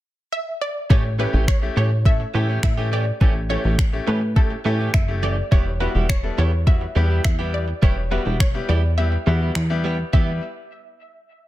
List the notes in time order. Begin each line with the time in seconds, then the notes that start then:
0.32 E5
0.61 D5
0.90 A1 E3 A3 C#4 E4 G4 C#5, kick
1.04 muted clean electric guitar stroke
1.19 E3 A3 C#4 E4 G4 B4
1.33 A1 E3 A3 C#4 G4
1.48 C#5, finger snap, kick
1.62 A3 C#4 E4 G4, muted clean electric guitar stroke
1.76 A2 E3 A3 C#4 G4 C#5
1.91 muted clean electric guitar stroke
2.05 A3 C#4 E4 A4 E5, muted clean electric guitar stroke, kick
2.20 muted clean electric guitar stroke
2.34 A2 E3 A3 C#4 E4 G4
2.49 E3 A3 C#4 G4
2.63 A2 E5, finger snap, muted clean electric guitar stroke, kick
2.77 E3 A3 C#4 E4 G4
2.92 E3 A3 C#4 G4 D5
3.06 muted clean electric guitar stroke
3.21 A1 E3 A3 C#4 E4 G4, kick
3.35 muted clean electric guitar stroke
3.50 E3 A3 C#4 E4 G4 C#5
3.64 A1 E3 A3 C#4 G4
3.78 finger snap, muted clean electric guitar stroke, kick
3.93 A3 C#4 E4 G4, muted clean electric guitar stroke
4.07 A2 E3 A3 C#4 G4 B4
4.22 muted clean electric guitar stroke
4.36 A3 C#4 E4 G4 A4, muted clean electric guitar stroke, kick
4.51 muted clean electric guitar stroke
4.65 A2 E3 A3 C#4 E4 G4
4.79 E3 A3 C#4 G4
4.94 F#1 E5, finger snap, kick
5.08 A3 C#4 E4 G4, muted clean electric guitar stroke
5.23 E3 A3 C#4 G4 D5
5.37 muted clean electric guitar stroke
5.51 E1 G3 B3 E4 G4 C#5, kick
5.66 muted clean electric guitar stroke
5.80 G3 B3 E4 F#4 G4 B4
5.95 E1 G3 B3 E4 G4
6.09 C#5, finger snap, kick
6.23 G3 B3 E4 A4, muted clean electric guitar stroke
6.38 E2 G3 B3 E4 G4 C#5
6.52 muted clean electric guitar stroke
6.66 G3 B3 E4 F#4 E5, muted clean electric guitar stroke, kick
6.81 muted clean electric guitar stroke
6.95 E2 G3 B3 E4 G4
7.10 G3 B3 E4 G4
7.25 E2 E5, finger snap, kick
7.39 G3 B3 E4 G4
7.53 D5, muted clean electric guitar stroke
7.68 muted clean electric guitar stroke
7.82 E1 G3 B3 E4 G4 C#5, kick
7.97 muted clean electric guitar stroke
8.11 G3 B3 E4 F#4 G4 B4
8.25 E1 G3 B3 E4 G4
8.40 C#5, finger snap, kick
8.54 G3 B3 E4 G4, muted clean electric guitar stroke
8.69 E2 G3 B3 E4 G4 D5
8.83 muted clean electric guitar stroke
8.98 G3 B3 E4 G4 E5, muted clean electric guitar stroke
9.12 muted clean electric guitar stroke
9.26 E2 G3 B3 E4 F#4 G4
9.41 G3 B3 E4 G4
9.55 E2, finger snap
9.70 G3 B3 E4 G4, muted clean electric guitar stroke
9.84 G3 B3 E4 G4
9.99 muted clean electric guitar stroke
10.13 E2 G3 B3 E4 G4 E5, kick